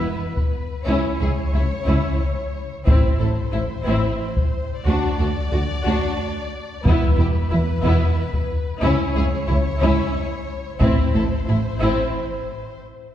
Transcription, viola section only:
Already playing: E4
0.87 E4
1.20 E4
1.54 E4
1.87 E4
2.87 E4
3.18 E4
3.52 E4
3.85 E4
4.85 F#4
5.19 F#4
5.52 F#4
5.85 F#4
6.85 E4
7.18 E4
7.50 E4
7.84 E4
8.81 E4
9.15 E4
9.47 E4
9.80 E4
10.80 E4
11.14 E4
11.47 E4
11.80 E4

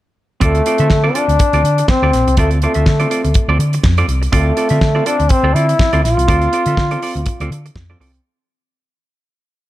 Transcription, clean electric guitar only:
0.40 C4 F4 A4 D5
0.66 C4 F4 A4 D5
0.80 C4 F4 A4 E5
1.04 C4 F4 A4 D5
1.14 C4 F4 A4 D5
1.29 muted clean electric guitar stroke
1.40 muted clean electric guitar stroke
1.54 C4 F4 A4 D5
1.79 muted clean electric guitar stroke
1.89 muted clean electric guitar stroke
2.03 C4 F4 A4 D5
2.28 muted clean electric guitar stroke
2.38 C4 F4 A4 D5
2.63 C4 F4 A4 D5
2.75 C4 F4 A4 E5
2.86 muted clean electric guitar stroke
3.00 C4 F4 A4 D5
3.10 C4 F4 A4 D5
3.24 muted clean electric guitar stroke
3.35 muted clean electric guitar stroke
3.49 C4 F4 A4 D5
3.60 muted clean electric guitar stroke
3.74 muted clean electric guitar stroke
3.85 muted clean electric guitar stroke
3.98 C4 F4 A4 D5
4.22 muted clean electric guitar stroke
4.32 C4 F4 A4 D5
4.57 C4 F4 A4 D5
4.70 C4 F4 A4 E5
4.82 muted clean electric guitar stroke
4.95 C4 F4 A4 D5
5.06 C4 F4 A4 D5
5.19 muted clean electric guitar stroke
5.30 muted clean electric guitar stroke
5.44 C4 F4 A4 D5
5.55 C4 F4 A4 D5
5.69 muted clean electric guitar stroke
5.80 muted clean electric guitar stroke
5.93 C4 F4 A4 D5
6.17 muted clean electric guitar stroke
6.28 C4 F4 A4 D5
6.52 C4 F4 A4 D5
6.67 C4 F4 A4 E5
6.78 muted clean electric guitar stroke
6.91 C4 F4 A4 D5
7.02 C4 F4 A4 D5
7.16 muted clean electric guitar stroke
7.28 muted clean electric guitar stroke
7.41 C4 F4 A4 D5
7.66 muted clean electric guitar stroke
7.76 muted clean electric guitar stroke
7.90 C4 F4 A4 D5
8.00 C4 F4 A4 D5
8.14 muted clean electric guitar stroke

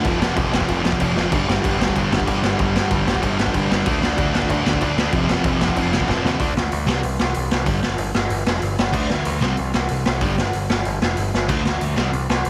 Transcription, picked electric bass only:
0.05 F1
0.37 F1
0.52 F1
0.69 F1
1.00 F1
1.16 F1
1.32 G1
1.48 G1
1.64 G1
1.80 G1
1.96 G1
2.12 G1
2.28 G1
2.42 G1
2.59 G1
2.91 G1
3.07 G1
3.23 G1
3.55 G1
3.70 G1
3.86 D2
4.02 D2
4.19 D2
4.34 D2
4.50 D2
4.66 D2
4.81 D2
4.96 D2
5.12 F1
5.45 F1
5.60 F1
5.76 F1
6.09 F1
6.25 D#2
6.40 D2
6.57 D2
6.73 D2
6.88 C2
7.04 C2
7.20 C2
7.37 C2
7.52 C2
7.66 G1
7.83 G1
7.98 G1
8.15 G1
8.30 G1
8.46 F1
8.62 G1
8.78 G1
8.94 D2
9.10 D2
9.26 D2
9.42 C2
9.59 C2
9.75 C2
9.91 C2
10.06 C2
10.22 G1
10.37 G1
10.54 G1
10.69 G1
10.86 G1
11.01 F1
11.17 G1
11.34 G1
11.49 D2
11.65 D2
11.81 D2
11.98 C2
12.13 C2
12.29 C2
12.46 C2

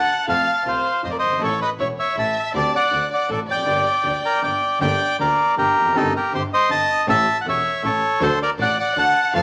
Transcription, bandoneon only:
Already playing: F#5 A5
0.29 F5 A5
0.68 C5 F5
1.04 C5 D#5
1.10 D5
1.19 C5 D#5
1.43 A4 C#5
1.62 B4 D#5
1.80 C#5 E5
1.99 C#5 E5
2.19 E5 A5
2.56 D5 A5
2.75 D5 F#5
3.13 D5 F#5
3.32 A4 D5
3.50 D5 G5
4.25 A#4 D5
4.43 D5 G5
4.81 D5 G5
5.20 A#4 D5
5.58 G4 A#4
5.96 D#4 A4
6.16 G4 A#4
6.35 G4 C5
6.53 C5 D#5
6.71 D#5 A5
7.09 E5 A5
7.41 F#5
7.48 C#5 E5
7.85 A4 C#5
8.22 A4 C5
8.42 A#4 D5
8.61 D5 F#5
8.80 D5 F#5
8.98 F#5 A5
9.35 F5 A5

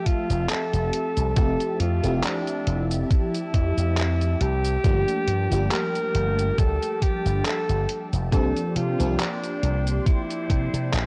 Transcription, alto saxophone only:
0.06 F4
0.50 A4
1.37 A4
1.80 F4
2.24 D4
3.11 E4
4.41 G4
5.72 A#4
6.58 A4
7.02 G4
7.46 A4
8.33 A4
8.76 F4
9.20 D4
10.07 E4

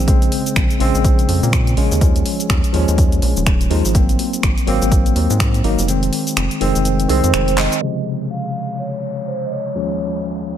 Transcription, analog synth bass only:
Already playing: A#1
0.56 A#1
0.80 A#1
0.95 A#1
1.29 F2
1.43 A#2
1.77 A#1
1.91 D#2
2.50 D#2
2.74 D#2
2.88 D#2
3.22 A#1
3.37 D#1
3.71 D#2
3.85 G#1
4.43 G#1
4.67 G#1
4.82 G#1
5.16 D#2
5.30 G#2
5.64 G#1
5.79 F1
6.37 F1
6.61 F1
6.75 F1
7.09 C2
7.24 F2
7.34 F1

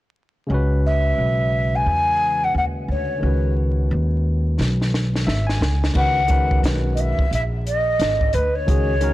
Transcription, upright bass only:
0.50 C#2
1.18 B1
1.86 E2
2.54 D#2
2.88 D2
3.23 C#2
3.91 D#2
4.59 B1
5.27 G#1
5.61 C#2
5.95 C#2
6.63 B1
7.19 muted upright bass stroke
7.31 A#1
7.99 G#1
8.34 D2
8.68 C#2

